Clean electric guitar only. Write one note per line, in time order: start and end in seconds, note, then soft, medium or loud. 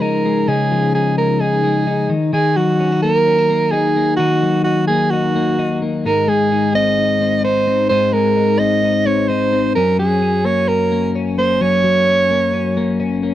0.00 0.47 C#3 medium
0.00 0.70 F3 medium
0.00 0.24 G#3 soft
0.00 0.48 D#4 medium
0.25 1.16 G#3 medium
0.48 2.09 C#3 medium
0.48 0.94 D#4 medium
0.71 2.15 F3 medium
0.95 1.40 D#4 medium
1.18 1.63 G#3 soft
1.40 1.87 D#4 medium
1.64 2.15 G#3 medium
1.87 2.34 D#4 medium
2.10 2.33 D#3 medium
2.33 4.19 D#3 medium
2.33 2.80 D#4 medium
2.57 4.42 F#3 medium
2.80 2.92 C#4 medium
2.92 3.26 D#4 soft
3.04 3.48 A#3 medium
3.27 3.39 C#4 medium
3.39 3.72 D#4 medium
3.50 3.95 A#3 medium
3.73 4.19 D#4 medium
3.96 4.88 A#3 soft
4.19 7.69 D#3 medium
4.19 4.66 D#4 medium
4.43 6.10 F#3 medium
4.66 5.13 D#4 medium
4.89 5.34 A#3 medium
5.13 5.58 D#4 medium
5.36 5.81 A#3 medium
5.59 6.06 D#4 medium
5.82 6.10 A#3 soft
6.05 7.90 G#2 medium
6.05 6.51 D#4 medium
6.28 8.12 G#3 medium
6.52 6.97 D#4 medium
6.75 7.20 C4 medium
6.98 7.43 D#4 soft
7.21 7.66 C4 soft
7.45 7.90 D#4 medium
7.67 8.59 C4 soft
7.91 9.76 G#2 medium
7.91 8.36 D#4 medium
8.13 9.80 G#3 medium
8.37 8.82 D#4 medium
8.60 9.05 C4 medium
8.83 9.29 D#4 soft
9.07 9.52 C4 medium
9.30 9.76 D#4 medium
9.53 9.80 C4 medium
9.76 11.60 F#2 medium
9.76 10.22 C#4 medium
9.99 11.83 F#3 medium
10.22 10.68 C#4 medium
10.45 10.91 A#3 medium
10.69 11.15 C#4 soft
10.92 11.38 A#3 medium
11.15 11.61 C#4 medium
11.38 12.30 A#3 medium
11.61 13.34 F#2 medium
11.61 12.07 C#4 medium
11.84 13.34 F#3 medium
12.07 12.53 C#4 medium
12.31 12.77 A#3 medium
12.54 13.00 C#4 medium
12.77 13.23 A#3 medium
13.00 13.34 C#4 medium
13.23 13.34 A#3 medium